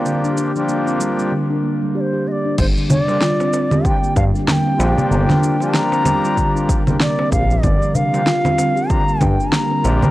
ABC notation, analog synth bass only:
X:1
M:4/4
L:1/8
Q:"Swing 16ths" 1/4=95
K:Gm
V:1 name="Analog synth bass" clef=bass
z8 | G,,, z4 G,, z B,,, | G,,, z6 B,,, | G,,, z4 G,, z B,,, |]